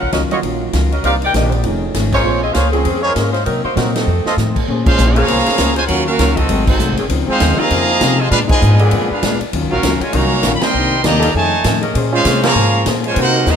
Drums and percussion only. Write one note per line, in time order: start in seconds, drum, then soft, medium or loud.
0.12 kick soft
0.12 snare medium
0.12 hi-hat pedal medium
0.12 ride medium
0.31 ride soft
0.43 kick soft
0.43 ride medium
0.73 kick soft
0.73 snare medium
0.73 hi-hat pedal medium
0.73 ride medium
0.92 ride soft
1.04 kick soft
1.04 ride medium
1.22 ride soft
1.34 kick soft
1.34 snare medium
1.34 hi-hat pedal medium
1.34 ride medium
1.52 ride medium
1.63 kick soft
1.63 ride medium
1.94 kick soft
1.94 snare medium
1.94 hi-hat pedal medium
1.94 ride medium
2.12 kick medium
2.12 crash medium
2.54 kick soft
2.54 snare medium
2.54 hi-hat pedal medium
2.54 ride medium
2.73 ride soft
2.85 kick soft
2.85 ride medium
3.16 kick soft
3.16 snare medium
3.16 hi-hat pedal medium
3.16 ride medium
3.34 snare soft
3.34 ride soft
3.46 kick soft
3.46 ride medium
3.77 kick soft
3.77 snare medium
3.77 hi-hat pedal medium
3.77 ride medium
3.96 snare medium
3.96 ride medium
4.26 snare medium
4.38 snare medium
4.38 hi-hat pedal medium
4.56 kick medium
4.56 crash medium
4.68 kick soft
4.86 kick loud
4.86 crash loud
4.98 hi-hat pedal medium
5.16 ride medium
5.28 kick soft
5.28 ride medium
5.38 snare soft
5.46 snare medium
5.46 ride medium
5.58 kick soft
5.58 snare medium
5.58 hi-hat pedal medium
5.58 ride medium
5.76 ride medium
5.88 kick soft
5.88 ride medium
6.19 kick soft
6.19 snare medium
6.19 hi-hat pedal medium
6.19 ride medium
6.37 kick medium
6.37 ride medium
6.49 kick soft
6.49 ride medium
6.67 kick loud
6.67 crash medium
6.79 hi-hat pedal medium
6.97 ride medium
7.09 kick soft
7.09 ride medium
7.40 kick soft
7.40 snare medium
7.40 hi-hat pedal medium
7.40 ride medium
7.70 kick soft
7.70 ride medium
8.01 kick soft
8.01 snare medium
8.01 hi-hat pedal medium
8.01 ride medium
8.31 kick soft
8.31 ride medium
8.49 kick loud
8.49 crash medium
8.61 hi-hat pedal medium
8.79 ride medium
8.91 kick soft
8.91 ride medium
9.23 kick soft
9.23 snare medium
9.23 hi-hat pedal medium
9.23 ride medium
9.41 ride medium
9.53 kick soft
9.53 ride medium
9.83 kick soft
9.83 snare medium
9.83 hi-hat pedal medium
9.83 ride medium
10.01 ride medium
10.13 kick soft
10.13 ride medium
10.43 kick soft
10.43 snare medium
10.43 hi-hat pedal medium
10.43 ride medium
10.61 snare loud
10.61 ride medium
11.04 kick soft
11.04 snare medium
11.04 hi-hat pedal medium
11.04 ride medium
11.22 ride medium
11.35 kick soft
11.64 kick soft
11.64 snare loud
11.64 hi-hat pedal medium
11.64 ride medium
11.82 ride medium
11.95 kick soft
11.95 ride medium
12.25 kick soft
12.25 snare medium
12.25 hi-hat pedal medium
12.25 ride loud
12.43 snare loud
12.43 ride medium
12.86 kick soft
12.86 snare medium
12.86 hi-hat pedal medium
12.86 ride medium
13.04 ride medium
13.16 kick soft
13.16 ride medium
13.46 snare medium
13.46 hi-hat pedal medium